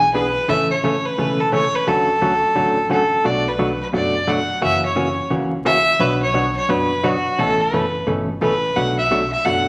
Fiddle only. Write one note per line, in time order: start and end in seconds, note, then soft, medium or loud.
0.00 0.12 G#5 loud
0.14 0.51 B4 loud
0.49 0.70 E5 medium
0.70 1.07 C#5 medium
1.05 1.42 B4 medium
1.40 1.53 A4 medium
1.53 1.76 C#5 medium
1.75 1.89 B4 medium
1.88 2.91 A4 medium
2.91 3.27 A4 medium
3.26 3.49 D5 medium
3.48 3.81 B4 medium
3.82 3.87 B4 medium
3.95 4.31 D5 medium
4.29 4.63 F#5 medium
4.64 4.83 E5 loud
4.85 5.29 C#5 medium
5.66 6.02 E5 loud
6.00 6.22 B4 loud
6.23 6.54 C#5 medium
6.57 6.71 C#5 medium
6.70 7.05 B4 medium
7.04 7.40 F#4 medium
7.39 7.62 A4 loud
7.61 8.07 B4 medium
8.42 8.77 B4 loud
8.76 8.98 F#5 loud
8.98 9.30 E5 medium
9.32 9.46 E5 medium
9.45 9.68 F#5 medium